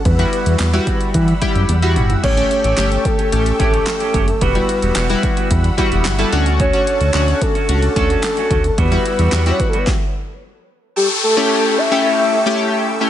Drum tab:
CC |----------------|x---------------|----------------|----------------|
HH |xxxxxxxxxxxxxxxx|-xxxxxxxxxxxxxxx|xxxxxxxxxxxxxxxx|xxxxxxxxxxxxxxxx|
CP |----x-----------|----x-------x---|----x-------x---|----x-------x---|
SD |----o-----------|----o-------o---|----o-------o---|----o-------o---|
T1 |------------o---|----------------|----------------|----------------|
T2 |--------------o-|----------------|----------------|----------------|
FT |---------------o|----------------|----------------|----------------|
BD |o-----o-o-o-----|o-----o---o---o-|o-----o-o-o-----|o-----o---o---o-|

CC |----------------|----------------|
HH |xxxxxxxx--------|----------------|
CP |----x-----------|----------------|
SD |----o---o-------|----------------|
T1 |----------------|----------------|
T2 |----------------|----------------|
FT |----------------|----------------|
BD |o-----o-o-------|----------------|